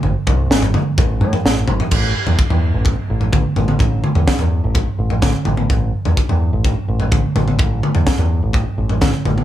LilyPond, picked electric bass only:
\new Staff \with { instrumentName = "Picked electric bass" } { \clef bass \time 4/4 \key gis \phrygian \tempo 4 = 127 gis,,16 r16 bis,,8 gis,,8 r8 a,,8 a,16 r16 a,,8 gis,,16 r16 | a,,8 r16 e,16 r16 e,8 a,,8 r16 a,,8 a,,16 r16 a,,8 | a,,8 r16 e,16 r16 e,8 a,,8 r16 a,,8 a,,16 r16 a,,8 | a,,8 r16 e,16 r16 e,8 a,,8 r16 a,,8 a,,16 r16 a,,8 |
a,,8 r16 e,16 r16 e,8 a,,8 r16 a,,8 a,,16 r16 a,,8 | }